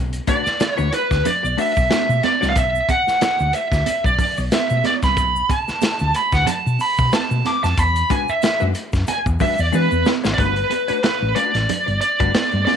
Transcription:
Already playing: B1
0.13 closed hi-hat, shaker
0.27 A3 D4 F#4 B4 D5, kick, closed hi-hat, muted conga, shaker
0.46 muted fingered electric bass stroke, snare, shaker
0.60 muted clean electric guitar stroke, snare, closed hi-hat, high conga, shaker
0.72 C#5
0.78 D2 A3 D4 F#4 B4, shaker
0.92 B4, muted clean electric guitar stroke, closed hi-hat, shaker
1.11 D2, muted clean electric guitar stroke, kick, snare, shaker
1.25 D5, muted clean electric guitar stroke, closed hi-hat, muted conga, low conga, shaker
1.43 B1, muted clean electric guitar stroke, shaker
1.57 A3 D4 F#4 B4 E5, open hi-hat, muted conga, shaker
1.76 B1, kick, shaker
1.90 A3 D4 F#4 B4, snare, closed hi-hat, high conga, shaker
2.09 B2, shaker
2.23 D5, muted clean electric guitar stroke, snare, closed hi-hat, high conga
2.41 C2 A3 D4 F#4 C#5, snare, shaker
2.50 F5
2.55 B1 E5, kick, closed hi-hat, shaker
2.75 shaker
2.89 F#5, kick, closed hi-hat, muted conga, shaker
3.07 muted fingered electric bass stroke, snare, shaker
3.21 snare, closed hi-hat, high conga, shaker
3.39 D2, shaker
3.53 E5, closed hi-hat, shaker
3.72 D2, kick, snare, shaker
3.86 closed hi-hat, muted conga, shaker
4.04 B1 D5, kick, shaker
4.19 kick, open hi-hat, muted conga, low conga, shaker
4.37 B1, shaker
4.52 E5, snare, closed hi-hat, high conga, shaker
4.70 B2, shaker
4.84 D5, snare, closed hi-hat, high conga
5.03 C2 B5, kick, snare, closed hi-hat, shaker
5.17 B1, kick, closed hi-hat, shaker
5.36 shaker
5.49 A5, kick, closed hi-hat, muted conga, shaker
5.68 muted fingered electric bass stroke, snare, shaker
5.81 snare, closed hi-hat, high conga, shaker
5.99 D2, shaker
6.14 B5, closed hi-hat, shaker
6.32 D2 F#5, kick, snare, shaker
6.47 A5, closed hi-hat, muted conga, low conga, shaker
6.66 B2, shaker
6.79 B5, open hi-hat, muted conga, shaker
6.97 B2, kick, shaker
7.12 A5, snare, closed hi-hat, high conga, shaker
7.31 B2, shaker
7.45 D6, snare, closed hi-hat, high conga
7.64 F2 A5, snare, shaker
7.77 E2 B5, kick, closed hi-hat, shaker
7.96 closed hi-hat, shaker
8.10 G#3 D4 F#4 B4 G#5, kick, closed hi-hat, muted conga, shaker
8.28 E5, muted fingered electric bass stroke, shaker
8.42 muted clean electric guitar stroke, snare, closed hi-hat, high conga, shaker
8.60 F#2 G#3 D4 F#4 B4, shaker
8.74 muted clean electric guitar stroke, closed hi-hat, shaker
8.93 F#2, muted clean electric guitar stroke, kick, snare, shaker
9.07 G#5, muted fingered electric bass stroke, closed hi-hat, muted conga, shaker
9.26 E2, muted clean electric guitar stroke, kick, shaker
9.40 G#3 D4 F#4 B4 E5, kick, open hi-hat, muted conga, low conga, shaker
9.58 E2 D5, muted clean electric guitar stroke, shaker
9.72 E3 G#3 D4 F#4 B4, high conga, shaker
9.91 E2, high conga, shaker
10.05 muted clean electric guitar stroke, snare, high conga, shaker
10.24 G#1 G#3 D4 F#4 C#5, snare, shaker
10.34 A3 D5
10.38 G1 D4 F#4 B4, kick, closed hi-hat
10.55 muted clean electric guitar stroke, closed hi-hat
10.70 muted clean electric guitar stroke, closed hi-hat, muted conga
10.88 A3 D4 F#4 C#5, muted fingered electric bass stroke, closed hi-hat
11.03 B4, snare, closed hi-hat, high conga
11.21 A1, muted clean electric guitar stroke
11.36 A3 D4 F#4 B4 D5, closed hi-hat
11.54 A1, muted clean electric guitar stroke, snare, closed hi-hat
11.69 muted clean electric guitar stroke, closed hi-hat, muted conga, low conga
11.86 G1, muted clean electric guitar stroke, closed hi-hat
12.01 D5, closed hi-hat, muted conga
12.20 G1 A3 D4 F#4 B4, kick, closed hi-hat
12.34 snare, closed hi-hat, high conga
12.51 G2, muted clean electric guitar stroke, closed hi-hat
12.65 A3 D4 F#4 B4 D5, snare, open hi-hat, high conga

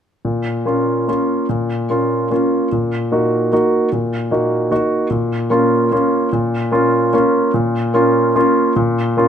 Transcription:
0.25 A#2
0.66 A#3 C#4 F4
1.08 A#3 C#4 F4
1.49 A#2
1.90 A#3 C#4 F4
2.31 A#3 C#4 F4
2.72 A#2
3.12 A#3 D#4 F#4
3.52 A#3 D#4 F#4
3.92 A#2
4.31 A#3 D#4 F#4
4.71 A#3 D#4 F#4
5.10 A#2
5.50 A#3 C#4 F4
5.92 A#3 C#4 F4
6.33 A#2
6.72 A#3 C#4 F4
7.13 A#3 C#4 F4
7.54 A#2
7.94 A#3 C#4 F4
8.36 A#3 C#4 F4
8.76 A#2
9.17 A#3 C#4 F4

